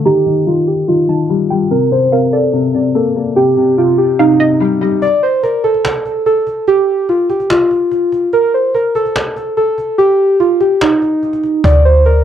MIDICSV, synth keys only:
0, 0, Header, 1, 2, 480
1, 0, Start_track
1, 0, Tempo, 413793
1, 64, Time_signature, 4, 2, 24, 8
1, 14198, End_track
2, 0, Start_track
2, 0, Title_t, "Synth keys"
2, 0, Program_c, 0, 88
2, 65, Note_on_c, 0, 67, 107
2, 516, Note_off_c, 0, 67, 0
2, 541, Note_on_c, 0, 65, 78
2, 765, Note_off_c, 0, 65, 0
2, 781, Note_on_c, 0, 67, 75
2, 1006, Note_off_c, 0, 67, 0
2, 1021, Note_on_c, 0, 65, 83
2, 1936, Note_off_c, 0, 65, 0
2, 1984, Note_on_c, 0, 70, 85
2, 2207, Note_off_c, 0, 70, 0
2, 2226, Note_on_c, 0, 72, 82
2, 2448, Note_off_c, 0, 72, 0
2, 2463, Note_on_c, 0, 70, 78
2, 2686, Note_off_c, 0, 70, 0
2, 2703, Note_on_c, 0, 69, 83
2, 3380, Note_off_c, 0, 69, 0
2, 3420, Note_on_c, 0, 69, 89
2, 3873, Note_off_c, 0, 69, 0
2, 3898, Note_on_c, 0, 67, 106
2, 4352, Note_off_c, 0, 67, 0
2, 4381, Note_on_c, 0, 65, 78
2, 4606, Note_off_c, 0, 65, 0
2, 4617, Note_on_c, 0, 67, 74
2, 4843, Note_off_c, 0, 67, 0
2, 4866, Note_on_c, 0, 63, 89
2, 5779, Note_off_c, 0, 63, 0
2, 5823, Note_on_c, 0, 74, 91
2, 6046, Note_off_c, 0, 74, 0
2, 6065, Note_on_c, 0, 72, 79
2, 6288, Note_off_c, 0, 72, 0
2, 6301, Note_on_c, 0, 70, 84
2, 6525, Note_off_c, 0, 70, 0
2, 6540, Note_on_c, 0, 69, 92
2, 7219, Note_off_c, 0, 69, 0
2, 7265, Note_on_c, 0, 69, 90
2, 7716, Note_off_c, 0, 69, 0
2, 7746, Note_on_c, 0, 67, 110
2, 8196, Note_off_c, 0, 67, 0
2, 8224, Note_on_c, 0, 65, 81
2, 8447, Note_off_c, 0, 65, 0
2, 8464, Note_on_c, 0, 67, 78
2, 8687, Note_off_c, 0, 67, 0
2, 8703, Note_on_c, 0, 65, 85
2, 9617, Note_off_c, 0, 65, 0
2, 9665, Note_on_c, 0, 70, 89
2, 9887, Note_off_c, 0, 70, 0
2, 9907, Note_on_c, 0, 72, 83
2, 10129, Note_off_c, 0, 72, 0
2, 10145, Note_on_c, 0, 70, 80
2, 10368, Note_off_c, 0, 70, 0
2, 10385, Note_on_c, 0, 69, 87
2, 11061, Note_off_c, 0, 69, 0
2, 11103, Note_on_c, 0, 69, 92
2, 11555, Note_off_c, 0, 69, 0
2, 11579, Note_on_c, 0, 67, 109
2, 12032, Note_off_c, 0, 67, 0
2, 12063, Note_on_c, 0, 65, 83
2, 12286, Note_off_c, 0, 65, 0
2, 12302, Note_on_c, 0, 67, 75
2, 12526, Note_off_c, 0, 67, 0
2, 12550, Note_on_c, 0, 63, 88
2, 13460, Note_off_c, 0, 63, 0
2, 13506, Note_on_c, 0, 74, 92
2, 13728, Note_off_c, 0, 74, 0
2, 13747, Note_on_c, 0, 72, 85
2, 13968, Note_off_c, 0, 72, 0
2, 13985, Note_on_c, 0, 70, 86
2, 14198, Note_off_c, 0, 70, 0
2, 14198, End_track
0, 0, End_of_file